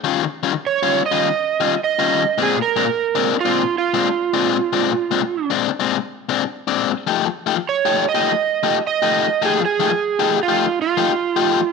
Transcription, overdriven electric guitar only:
X:1
M:4/4
L:1/16
Q:"Swing" 1/4=102
K:Bbmix
V:1 name="Overdriven electric guitar"
[E,G,_DF] z [E,G,DF] z2 [E,G,DF] z [E,G,DF] z2 [E,G,DF] z2 [E,G,DF] z2 | [B,,A,CD] z [B,,A,CD] z2 [B,,A,CD] z [B,,A,CD] z2 [B,,A,CD] z2 [B,,A,CD] z2 | [B,,A,CD] z [B,,A,CD] z2 [B,,A,CD] z [B,,A,CD] z2 [B,,A,CD] z2 [B,,A,CD] z2 | [F,=A,EG] z [F,A,EG] z2 [F,A,EG] z [F,A,EG] z2 [F,A,EG] z2 [F,A,EG] z2 |
[F,=A,EG] z [F,A,EG] z2 [F,A,EG] z [F,A,EG] z2 [F,A,EG] z2 [F,A,EG] z2 |]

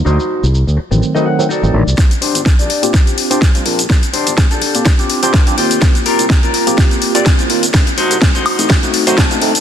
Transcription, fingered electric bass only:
X:1
M:4/4
L:1/16
Q:"Swing 16ths" 1/4=125
K:Bb
V:1 name="Fingered electric bass" clef=bass
D,, z2 C,,2 D,, z A,,, z4 z A,,, A,,, C,, | B,,, z2 G,,,2 B,,, z B,, z4 z G,, B,,,2 | z3 G,,,2 B,,, z B,, z4 z G,, E,,2 | E,, z2 C,,2 E,, z B,,, z4 z C,, E,,2 |
D,, z2 C,,2 D,, z A,,, z3 ^F,, z D,,3 |]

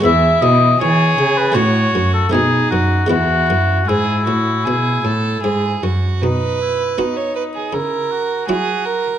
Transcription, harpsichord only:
X:1
M:4/4
L:1/8
Q:1/4=79
K:E
V:1 name="Harpsichord"
[G,B,B]4 [A,CF]2 [A,B,D]2 | [G,B,E]8 | [K:B] z2 [DF]2 z2 [EF]2 |]
V:2 name="Harpsichord" clef=bass
E,, B,, E, C, A,, F,, B,, F,, | E,, F,, G,, A,, B,, A,, G,, F,, | [K:B] B,,2 B,2 C,2 F,2 |]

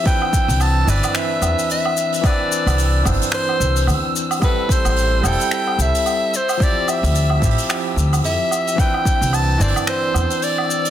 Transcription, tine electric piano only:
X:1
M:4/4
L:1/8
Q:"Swing 16ths" 1/4=110
K:C
V:1 name="Tine electric piano"
[E,CDB]3 [E,CDB]4- [E,CDB] | [E,CDB]3 [E,CDc]4- [E,CDc] | [G,CEA]3 [G,CEA]4 z | [F,CEG]3 [F,CEG]4- [F,CEG] |
[E,CDB]3 [E,CDc]4- [E,CDc] |]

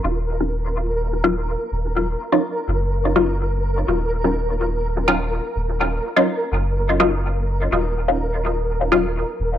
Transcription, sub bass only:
X:1
M:4/4
L:1/8
Q:1/4=125
K:Ebm
V:1 name="Sub bass" clef=bass
E,,,6 z E,,,- | E,,, z2 G,,,4- G,,, | E,,,6 z E,,,- | E,,, z2 G,,,4- G,,, |
E,,,6 z E,,, |]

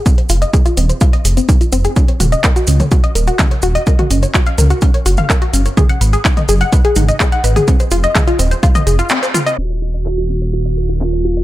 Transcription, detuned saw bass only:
X:1
M:4/4
L:1/8
Q:1/4=126
K:Ebm
V:1 name="Detuned saw bass" clef=bass
z F,,, z E,,, z F,,, z F,,, | z E,,, z D,, z E,,, z E,,, | z G,,, z D,, z G,,, z G,,, | z A,,, z G,,, z A,,, z A,,, |
z F,,, z E,,, z F,,, z2 | E,,,8 |]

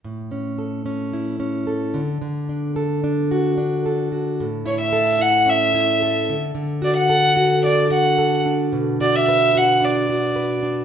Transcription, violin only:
X:1
M:4/4
L:1/16
Q:1/4=110
K:D
V:1 name="Violin"
z16 | z16 | z2 c e3 f2 e6 z2 | z2 d f4- f d2 f4 z2 |
z2 d e3 f2 d6 z2 |]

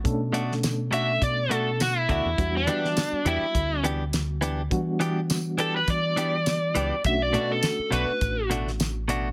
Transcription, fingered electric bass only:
X:1
M:4/4
L:1/16
Q:"Swing 16ths" 1/4=103
K:Bm
V:1 name="Fingered electric bass" clef=bass
B,,8 B,,6 D,, E,, | E,,2 E,2 z2 E,, z D,,8 | E,8 E,6 C,, z | B,,,2 B,,2 z2 B,,, z A,,,8 |]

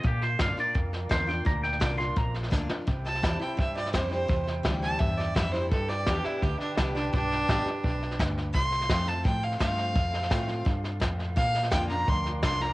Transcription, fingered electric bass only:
X:1
M:4/4
L:1/8
Q:1/4=170
K:C
V:1 name="Fingered electric bass" clef=bass
_B,,2 G,, z F,,2 E,,2 | D,,2 C,,2 _B,,,2 D,, z | C,,2 E,, z G,,2 F,,2 | E,,2 D,,2 E,,2 F,,2 |
G,,2 E,, z D,, z C,,2 | B,,,2 A,,, z B,,,2 D,,2 | C,,2 F,,2 A,,2 G,,2 | F,,2 A,,2 G,,2 F,,2 |
_B,,2 F,,2 D,,2 C,,2 |]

